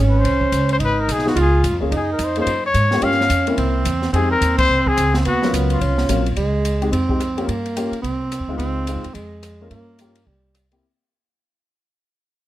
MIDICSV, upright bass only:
0, 0, Header, 1, 3, 480
1, 0, Start_track
1, 0, Key_signature, -4, "minor"
1, 0, Tempo, 278552
1, 1372, Time_signature, 4, 2, 24, 8
1, 21502, End_track
2, 0, Start_track
2, 0, Title_t, "Upright bass"
2, 0, Program_c, 0, 32
2, 0, Note_on_c, 0, 32, 87
2, 407, Note_off_c, 0, 32, 0
2, 417, Note_on_c, 0, 36, 81
2, 880, Note_off_c, 0, 36, 0
2, 900, Note_on_c, 0, 37, 85
2, 1361, Note_off_c, 0, 37, 0
2, 1376, Note_on_c, 0, 32, 75
2, 1839, Note_off_c, 0, 32, 0
2, 1864, Note_on_c, 0, 35, 88
2, 2322, Note_off_c, 0, 35, 0
2, 2339, Note_on_c, 0, 37, 82
2, 2799, Note_off_c, 0, 37, 0
2, 2822, Note_on_c, 0, 44, 83
2, 2962, Note_off_c, 0, 44, 0
2, 2962, Note_on_c, 0, 41, 54
2, 3125, Note_off_c, 0, 41, 0
2, 3133, Note_on_c, 0, 37, 61
2, 3280, Note_off_c, 0, 37, 0
2, 3303, Note_on_c, 0, 42, 78
2, 3761, Note_off_c, 0, 42, 0
2, 3773, Note_on_c, 0, 41, 91
2, 4228, Note_off_c, 0, 41, 0
2, 4238, Note_on_c, 0, 42, 80
2, 4707, Note_off_c, 0, 42, 0
2, 4726, Note_on_c, 0, 44, 88
2, 5191, Note_off_c, 0, 44, 0
2, 5209, Note_on_c, 0, 43, 78
2, 5672, Note_off_c, 0, 43, 0
2, 5681, Note_on_c, 0, 41, 93
2, 6148, Note_off_c, 0, 41, 0
2, 6168, Note_on_c, 0, 36, 82
2, 6623, Note_off_c, 0, 36, 0
2, 6634, Note_on_c, 0, 40, 93
2, 7104, Note_off_c, 0, 40, 0
2, 7116, Note_on_c, 0, 41, 78
2, 7585, Note_off_c, 0, 41, 0
2, 7599, Note_on_c, 0, 39, 88
2, 8066, Note_off_c, 0, 39, 0
2, 8078, Note_on_c, 0, 36, 82
2, 8546, Note_off_c, 0, 36, 0
2, 8573, Note_on_c, 0, 37, 88
2, 9033, Note_off_c, 0, 37, 0
2, 9052, Note_on_c, 0, 39, 78
2, 9513, Note_off_c, 0, 39, 0
2, 9535, Note_on_c, 0, 37, 87
2, 9994, Note_off_c, 0, 37, 0
2, 10015, Note_on_c, 0, 36, 86
2, 10473, Note_off_c, 0, 36, 0
2, 10498, Note_on_c, 0, 34, 88
2, 10955, Note_off_c, 0, 34, 0
2, 10978, Note_on_c, 0, 37, 80
2, 11881, Note_off_c, 0, 37, 0
2, 11925, Note_on_c, 0, 41, 85
2, 12834, Note_off_c, 0, 41, 0
2, 12891, Note_on_c, 0, 43, 81
2, 13601, Note_off_c, 0, 43, 0
2, 13845, Note_on_c, 0, 36, 84
2, 14438, Note_off_c, 0, 36, 0
2, 14470, Note_on_c, 0, 40, 57
2, 14598, Note_off_c, 0, 40, 0
2, 14608, Note_on_c, 0, 38, 71
2, 14772, Note_off_c, 0, 38, 0
2, 14802, Note_on_c, 0, 37, 74
2, 15396, Note_off_c, 0, 37, 0
2, 15418, Note_on_c, 0, 41, 65
2, 15578, Note_off_c, 0, 41, 0
2, 15592, Note_on_c, 0, 40, 61
2, 15745, Note_off_c, 0, 40, 0
2, 15753, Note_on_c, 0, 41, 87
2, 16670, Note_off_c, 0, 41, 0
2, 16724, Note_on_c, 0, 43, 78
2, 17637, Note_off_c, 0, 43, 0
2, 17694, Note_on_c, 0, 36, 79
2, 18604, Note_off_c, 0, 36, 0
2, 21502, End_track
3, 0, Start_track
3, 0, Title_t, "Muted upright bass strokes"
3, 13636, Note_on_c, 9, 29, 37
3, 13808, Note_off_c, 9, 29, 0
3, 21502, End_track
0, 0, End_of_file